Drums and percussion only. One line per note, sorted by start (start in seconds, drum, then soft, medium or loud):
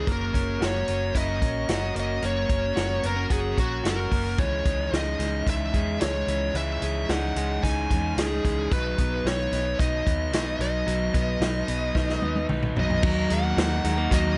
0.07 kick loud
0.07 closed hi-hat medium
0.34 kick medium
0.34 closed hi-hat medium
0.62 snare medium
0.62 closed hi-hat medium
0.88 closed hi-hat medium
1.15 kick medium
1.15 closed hi-hat medium
1.42 kick medium
1.42 closed hi-hat medium
1.69 snare loud
1.69 closed hi-hat medium
1.96 closed hi-hat medium
2.22 closed hi-hat medium
2.49 kick medium
2.49 closed hi-hat medium
2.77 snare medium
2.77 closed hi-hat medium
3.03 closed hi-hat medium
3.30 kick medium
3.30 closed hi-hat medium
3.58 kick medium
3.58 closed hi-hat medium
3.85 snare loud
3.85 closed hi-hat loud
4.12 kick medium
4.12 open hi-hat medium
4.38 kick loud
4.38 closed hi-hat medium
4.65 kick medium
4.65 closed hi-hat medium
4.93 snare medium
4.93 closed hi-hat medium
5.20 snare soft
5.20 closed hi-hat medium
5.47 kick medium
5.47 closed hi-hat medium
5.74 kick medium
5.74 closed hi-hat medium
6.01 snare loud
6.01 closed hi-hat loud
6.28 closed hi-hat medium
6.55 closed hi-hat medium
6.82 closed hi-hat medium
7.09 snare medium
7.09 closed hi-hat medium
7.36 closed hi-hat medium
7.63 kick medium
7.63 closed hi-hat medium
7.91 kick medium
7.91 closed hi-hat medium
8.18 snare loud
8.18 closed hi-hat loud
8.45 kick medium
8.45 closed hi-hat medium
8.71 kick loud
8.71 closed hi-hat medium
8.98 kick medium
8.98 closed hi-hat medium
9.27 snare medium
9.27 closed hi-hat medium
9.53 snare soft
9.53 closed hi-hat medium
9.79 kick medium
9.79 closed hi-hat medium
10.07 kick medium
10.07 closed hi-hat medium
10.33 snare medium
10.33 closed hi-hat loud
10.61 closed hi-hat medium
10.88 closed hi-hat medium
11.14 kick medium
11.14 closed hi-hat medium
11.42 snare medium
11.42 closed hi-hat medium
11.68 closed hi-hat medium
11.95 kick medium
11.95 snare soft
12.09 snare soft
12.22 high tom medium
12.36 high tom medium
12.49 mid tom medium
12.63 mid tom medium
12.76 floor tom medium
12.90 floor tom medium
13.03 kick loud
13.03 crash medium
13.30 closed hi-hat medium
13.58 snare loud
13.58 closed hi-hat medium
13.84 snare soft
13.84 closed hi-hat medium
14.11 kick medium
14.11 closed hi-hat medium